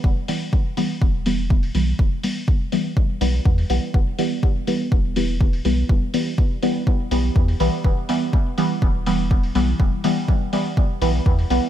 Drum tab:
HH |--o---o---o--oo-|--o---o---o--oo-|--o---o---o--oo-|--o---o---o--oo-|
BD |o---o---o---o---|o---o---o---o---|o---o---o---o---|o---o---o---o---|

HH |--o---o---o--oo-|--o---o---o--oo-|
BD |o---o---o---o---|o---o---o---o---|